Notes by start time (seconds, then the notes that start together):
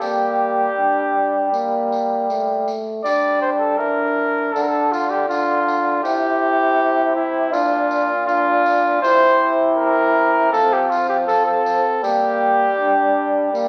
0.01 G3 A#3 G4, tambourine
0.77 D4
1.53 A#3, tambourine
1.92 tambourine
2.29 A3, tambourine
2.68 tambourine
3.04 G3 D4 D5, tambourine
3.41 C5
3.59 A4
3.78 E3 D4 A#4
4.53 D3 D4 A4, tambourine
4.62 A#4
4.68 A4
4.92 F4, tambourine
5.10 G4
5.29 D4 F4, tambourine
5.68 tambourine
6.04 C3 E4 G4, tambourine
7.16 E4
7.53 A#2 D4 F4, tambourine
7.91 tambourine
8.27 D4 F4, tambourine
8.66 tambourine
9.03 C3 E4 C5, tambourine
9.77 A#4
10.52 F3 C4 A4, tambourine
10.73 G4
10.90 F4, tambourine
11.09 G4
11.27 C4 A4, tambourine
11.46 A4
11.66 tambourine
12.02 G3 A#3 G4, tambourine
12.78 D4
13.54 A#3, tambourine